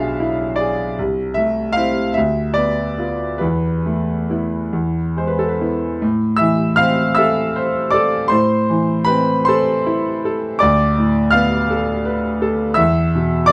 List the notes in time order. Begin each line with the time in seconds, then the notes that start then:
Already playing: B1 B2 D4 G#4 E5 F5
0.20 E4
0.56 D5
0.60 G#4
0.99 C2
1.34 A3 E5
1.73 C4 E4 F5
2.14 D2 E5
2.54 B3 D5
2.98 B3 F4
3.38 E2 B4
3.86 A3
4.30 B3 E4
4.73 E2
5.16 G#3 C5
5.27 B4
5.39 A4
5.48 B4
5.61 B3 E4
6.02 A2
6.37 E5 E6
6.41 E3
6.76 C4 F5 F6
7.15 A4 E5 E6
7.56 C5
7.91 A4 D5 D6
8.28 A2 C5 C6
8.70 E3
9.05 C4 B4 B5
9.45 A4 C5 C6
9.87 E4
10.25 A4
10.59 D2 D5 D6
10.98 A2
11.31 B3 F5 F6
11.71 A4
12.05 B4
12.42 A4
12.74 E2 E5 E6
13.15 B2
13.46 D5 D6